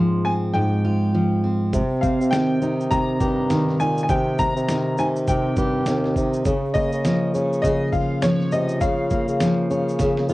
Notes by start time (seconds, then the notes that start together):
Already playing: G#2 F3 G#3 C4 F4 C6
0.25 C4 G#5
0.54 G#2 G5
0.85 F4
1.14 F3
1.44 C4
1.73 C3, kick, shaker
2.01 C4 F5, kick, shaker
2.21 C3, shaker
2.31 D#3 G5, snare, shaker
2.61 C3 D#4, shaker
2.81 shaker
2.91 C3 A#5, kick, shaker
3.20 G2 G4, kick, shaker
3.50 D#3, snare, shaker
3.69 snare
3.80 A#2 D#4 G#5, shaker
3.98 shaker
4.03 G#5
4.09 C3 G5, kick, shaker
4.39 C4 A#5, kick, shaker
4.56 C3, shaker
4.69 D#3, snare, shaker
4.98 C3 D#4 G#5, shaker
5.16 shaker
5.28 C3 G5, kick, shaker
5.56 G2 G4, kick, shaker
5.86 D#2 D#3, snare, shaker
6.04 snare
6.16 C3 D#4, kick, shaker
6.33 shaker
6.45 C#3, kick, shaker
6.74 A#3 D#5, kick, shaker
6.92 C#3, shaker
7.05 F3, snare, shaker
7.34 C#3 C#4, shaker
7.53 shaker
7.62 C#3 D#5, kick, shaker
7.92 F4 F5, kick, shaker
8.22 F3 C#5, snare, shaker
8.40 snare
8.52 C3 C#4 D#5, shaker
8.68 shaker
8.81 C#3 F5, kick, shaker
9.10 A#3, kick, shaker
9.28 C#3, shaker
9.40 F3, snare, shaker
9.69 C#3 C#4, shaker
9.89 shaker
9.99 C#3, kick, snare, shaker
10.17 snare
10.28 F2 F4, shaker